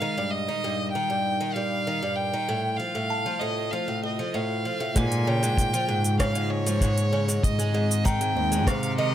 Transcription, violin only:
0, 0, Header, 1, 2, 480
1, 0, Start_track
1, 0, Tempo, 618557
1, 12, Time_signature, 4, 2, 24, 8
1, 7097, End_track
2, 0, Start_track
2, 0, Title_t, "Violin"
2, 0, Program_c, 0, 40
2, 0, Note_on_c, 0, 77, 86
2, 237, Note_on_c, 0, 75, 92
2, 248, Note_off_c, 0, 77, 0
2, 704, Note_off_c, 0, 75, 0
2, 708, Note_on_c, 0, 79, 99
2, 1188, Note_on_c, 0, 77, 93
2, 1200, Note_off_c, 0, 79, 0
2, 1675, Note_on_c, 0, 79, 87
2, 1687, Note_off_c, 0, 77, 0
2, 2153, Note_on_c, 0, 77, 87
2, 2165, Note_off_c, 0, 79, 0
2, 2636, Note_on_c, 0, 75, 87
2, 2648, Note_off_c, 0, 77, 0
2, 2880, Note_on_c, 0, 77, 82
2, 2892, Note_off_c, 0, 75, 0
2, 3126, Note_off_c, 0, 77, 0
2, 3142, Note_on_c, 0, 75, 72
2, 3379, Note_on_c, 0, 77, 82
2, 3390, Note_off_c, 0, 75, 0
2, 3858, Note_on_c, 0, 80, 85
2, 3870, Note_off_c, 0, 77, 0
2, 4101, Note_on_c, 0, 79, 101
2, 4112, Note_off_c, 0, 80, 0
2, 4807, Note_off_c, 0, 79, 0
2, 4812, Note_on_c, 0, 77, 91
2, 5045, Note_on_c, 0, 73, 100
2, 5057, Note_off_c, 0, 77, 0
2, 5767, Note_on_c, 0, 75, 84
2, 5779, Note_off_c, 0, 73, 0
2, 6247, Note_on_c, 0, 79, 100
2, 6259, Note_off_c, 0, 75, 0
2, 6731, Note_on_c, 0, 77, 91
2, 6743, Note_off_c, 0, 79, 0
2, 6963, Note_off_c, 0, 77, 0
2, 6968, Note_on_c, 0, 75, 87
2, 7097, Note_off_c, 0, 75, 0
2, 7097, End_track
0, 0, End_of_file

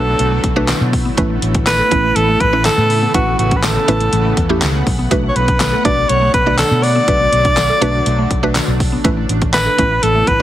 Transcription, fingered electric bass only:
0, 0, Header, 1, 2, 480
1, 0, Start_track
1, 0, Key_signature, 2, "minor"
1, 0, Tempo, 491803
1, 1149, Time_signature, 4, 2, 24, 8
1, 10171, End_track
2, 0, Start_track
2, 0, Title_t, "Fingered electric bass"
2, 0, Program_c, 0, 33
2, 0, Note_on_c, 0, 35, 90
2, 129, Note_off_c, 0, 35, 0
2, 189, Note_on_c, 0, 35, 99
2, 369, Note_off_c, 0, 35, 0
2, 426, Note_on_c, 0, 35, 95
2, 697, Note_off_c, 0, 35, 0
2, 789, Note_on_c, 0, 47, 88
2, 1059, Note_off_c, 0, 47, 0
2, 1149, Note_on_c, 0, 33, 105
2, 1329, Note_off_c, 0, 33, 0
2, 1389, Note_on_c, 0, 33, 99
2, 1749, Note_off_c, 0, 33, 0
2, 1871, Note_on_c, 0, 33, 89
2, 2050, Note_off_c, 0, 33, 0
2, 2109, Note_on_c, 0, 33, 102
2, 2289, Note_off_c, 0, 33, 0
2, 2346, Note_on_c, 0, 33, 93
2, 2617, Note_off_c, 0, 33, 0
2, 2709, Note_on_c, 0, 45, 86
2, 2979, Note_off_c, 0, 45, 0
2, 3069, Note_on_c, 0, 33, 104
2, 3249, Note_off_c, 0, 33, 0
2, 3309, Note_on_c, 0, 33, 98
2, 3669, Note_off_c, 0, 33, 0
2, 3790, Note_on_c, 0, 33, 92
2, 3969, Note_off_c, 0, 33, 0
2, 4030, Note_on_c, 0, 33, 101
2, 4209, Note_off_c, 0, 33, 0
2, 4266, Note_on_c, 0, 40, 88
2, 4483, Note_off_c, 0, 40, 0
2, 4509, Note_on_c, 0, 37, 91
2, 4725, Note_off_c, 0, 37, 0
2, 4750, Note_on_c, 0, 35, 91
2, 4965, Note_off_c, 0, 35, 0
2, 4989, Note_on_c, 0, 35, 104
2, 5169, Note_off_c, 0, 35, 0
2, 5229, Note_on_c, 0, 35, 101
2, 5589, Note_off_c, 0, 35, 0
2, 5711, Note_on_c, 0, 35, 90
2, 5890, Note_off_c, 0, 35, 0
2, 5949, Note_on_c, 0, 35, 99
2, 6129, Note_off_c, 0, 35, 0
2, 6187, Note_on_c, 0, 35, 97
2, 6457, Note_off_c, 0, 35, 0
2, 6550, Note_on_c, 0, 47, 91
2, 6819, Note_off_c, 0, 47, 0
2, 6909, Note_on_c, 0, 35, 104
2, 7089, Note_off_c, 0, 35, 0
2, 7149, Note_on_c, 0, 35, 102
2, 7509, Note_off_c, 0, 35, 0
2, 7630, Note_on_c, 0, 35, 94
2, 7809, Note_off_c, 0, 35, 0
2, 7871, Note_on_c, 0, 35, 99
2, 8050, Note_off_c, 0, 35, 0
2, 8107, Note_on_c, 0, 35, 99
2, 8377, Note_off_c, 0, 35, 0
2, 8469, Note_on_c, 0, 35, 85
2, 8739, Note_off_c, 0, 35, 0
2, 8830, Note_on_c, 0, 33, 101
2, 9009, Note_off_c, 0, 33, 0
2, 9069, Note_on_c, 0, 33, 96
2, 9429, Note_off_c, 0, 33, 0
2, 9552, Note_on_c, 0, 33, 97
2, 9730, Note_off_c, 0, 33, 0
2, 9790, Note_on_c, 0, 33, 98
2, 9969, Note_off_c, 0, 33, 0
2, 10027, Note_on_c, 0, 33, 91
2, 10171, Note_off_c, 0, 33, 0
2, 10171, End_track
0, 0, End_of_file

